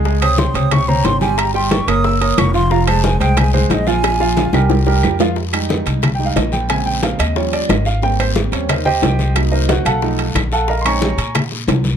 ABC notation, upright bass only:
X:1
M:4/4
L:1/8
Q:1/4=180
K:Cphr
V:1 name="Upright bass" clef=bass
D,,3 D,,3 G,,,2- | G,,,3 _G,,,3 F,,,2- | F,,,3 C,,3 B,,,2- | B,,,3 C,,3 F,,2- |
[K:Fm] F,,3 C,,3 B,,,2- | B,,,3 E,,3 A,,,2- | A,,,3 E,,3 C,,2- | C,,3 =B,,,3 _B,,,2- |
B,,,3 B,,3 C,,2 |]